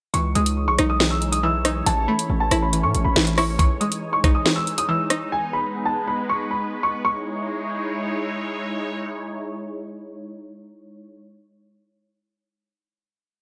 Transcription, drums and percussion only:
0.14 closed hi-hat medium
0.35 closed hi-hat medium
0.46 closed hi-hat medium
0.79 cross-stick loud
0.79 closed hi-hat medium
1.00 snare loud
1.22 closed hi-hat medium
1.33 closed hi-hat medium
1.65 cross-stick medium
1.65 closed hi-hat medium
1.86 closed hi-hat medium
2.19 closed hi-hat medium
2.51 cross-stick medium
2.51 closed hi-hat medium
2.73 closed hi-hat medium
2.95 closed hi-hat medium
3.16 snare loud
3.27 closed hi-hat medium
3.38 cross-stick medium
3.38 open hi-hat medium
3.59 kick loud
3.59 closed hi-hat loud
3.81 closed hi-hat medium
3.92 closed hi-hat medium
4.24 kick loud
4.24 cross-stick medium
4.24 closed hi-hat medium
4.46 snare loud
4.67 closed hi-hat medium
4.78 closed hi-hat medium
5.10 cross-stick medium
5.10 closed hi-hat medium

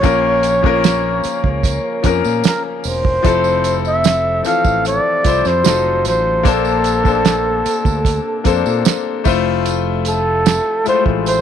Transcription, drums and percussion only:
0.03 kick loud
0.03 closed hi-hat medium
0.03 tambourine soft
0.43 closed hi-hat medium
0.43 tambourine soft
0.64 kick loud
0.84 snare loud
0.84 closed hi-hat medium
0.84 tambourine medium
1.24 closed hi-hat medium
1.24 tambourine soft
1.44 kick medium
1.63 kick medium
1.63 closed hi-hat medium
1.63 tambourine soft
2.04 kick medium
2.04 closed hi-hat medium
2.04 tambourine soft
2.24 tambourine soft
2.44 snare loud
2.44 closed hi-hat medium
2.44 tambourine medium
2.84 open hi-hat medium
2.84 tambourine medium
3.05 kick medium
3.25 kick loud
3.25 closed hi-hat medium
3.25 tambourine soft
3.44 tambourine soft
3.64 closed hi-hat medium
3.64 tambourine soft
3.85 tambourine soft
4.04 snare loud
4.04 closed hi-hat medium
4.04 tambourine medium
4.45 closed hi-hat medium
4.45 tambourine soft
4.64 kick medium
4.64 tambourine soft
4.85 closed hi-hat medium
4.85 tambourine soft
5.24 kick medium
5.24 closed hi-hat medium
5.24 tambourine soft
5.45 snare soft
5.45 tambourine soft
5.64 snare loud
5.64 closed hi-hat medium
5.64 tambourine medium
6.05 snare soft
6.05 closed hi-hat medium
6.05 tambourine medium
6.45 kick loud
6.45 closed hi-hat medium
6.45 tambourine soft
6.65 tambourine soft
6.84 closed hi-hat medium
6.84 tambourine soft
7.05 kick loud
7.05 tambourine soft
7.25 snare loud
7.25 closed hi-hat medium
7.25 tambourine medium
7.66 closed hi-hat medium
7.66 tambourine soft
7.85 kick medium
7.85 tambourine soft
8.05 kick medium
8.05 closed hi-hat medium
8.05 tambourine soft
8.45 kick medium
8.45 closed hi-hat medium
8.45 tambourine soft
8.66 tambourine soft
8.85 snare loud
8.85 closed hi-hat medium
8.85 tambourine medium
9.25 kick loud
9.25 open hi-hat medium
9.25 tambourine medium
9.66 closed hi-hat medium
9.66 tambourine soft
10.05 closed hi-hat medium
10.05 tambourine soft
10.46 snare loud
10.46 closed hi-hat medium
10.46 tambourine medium
10.86 closed hi-hat medium
10.86 tambourine soft
11.06 kick medium
11.26 closed hi-hat medium
11.26 tambourine soft

